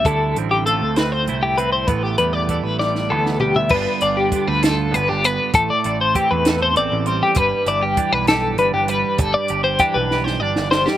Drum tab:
CC |------------|------------|x-----------|------------|
HH |x-x-x-x-x-x-|x-x-x-------|--x-x-x-x-x-|x-x-x-x-x-x-|
SD |------o-----|------oo-o--|------o-----|------o-----|
FT |------------|----------oo|------------|------------|
BD |o-----------|o---o-------|o---o-------|o---o-------|

CC |------------|------------|
HH |x-x-x-x-x-x-|x-x-x-------|
SD |------o-----|------oo-ooo|
FT |------------|------------|
BD |o---o-------|o---o-------|